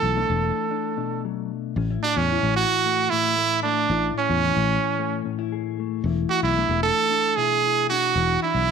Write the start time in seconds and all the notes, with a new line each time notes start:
Already playing: E3 A3 A4
0.03 B1
0.17 A3 D4
0.30 E1
0.71 D4
0.97 B2 D4
1.25 F#3
1.76 A1 A2 C#4
1.90 E4
2.03 D4 F#4
2.17 E2 C#4 G#4
2.32 E3 E4
2.43 A1
2.56 F#4
2.85 A3
3.10 A2 A3 E4
3.38 A3
3.63 A3 D4
3.90 A1 A2 E4
4.18 C#4, muted clean electric guitar stroke
4.29 E2
4.45 E3, muted clean electric guitar stroke
4.57 A1
4.99 A3
5.25 A2 C#4
5.39 E4
5.52 G#4
5.80 A3
6.04 E1 E3 E4
6.30 E4 F#4
6.43 B1 E4
6.58 A3 D4
6.69 E1
6.83 A4
7.10 D4
7.37 B2 E4 G#4
7.64 E4
7.89 D4 F#4
8.15 E1 E3 D4
8.43 D4 E4
8.54 B1